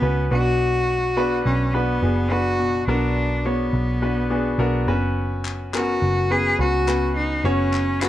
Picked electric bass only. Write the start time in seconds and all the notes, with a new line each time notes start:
0.02 C#2
0.31 B1
1.46 B1
2.02 F#1
2.88 B1
3.73 B1
4.58 B1
4.88 F#1
6.02 F#1
6.59 C#2
7.44 F#1